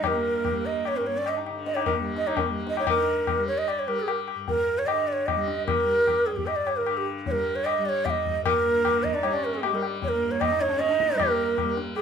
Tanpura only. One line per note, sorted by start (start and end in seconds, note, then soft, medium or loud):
0.00 0.99 G2 medium
0.00 1.50 D3 medium
0.00 0.49 G3 medium
0.49 2.00 G3 medium
0.99 4.35 G2 medium
1.50 2.87 D3 medium
2.00 2.48 G3 medium
2.48 3.37 G3 medium
2.87 4.84 D3 medium
3.37 3.86 G3 medium
3.86 5.35 G3 medium
4.35 6.31 G2 medium
4.84 6.80 D3 medium
5.35 5.83 G3 medium
5.83 7.30 G3 medium
6.31 8.26 G2 medium
6.80 8.75 D3 medium
7.30 7.78 G3 medium
7.78 9.22 G3 medium
8.26 10.19 G2 medium
8.76 10.68 D3 medium
9.22 9.71 G3 medium
9.71 11.14 G3 medium
10.20 12.02 G2 medium
10.68 12.02 D3 medium
11.14 11.62 G3 medium
11.62 12.02 G3 medium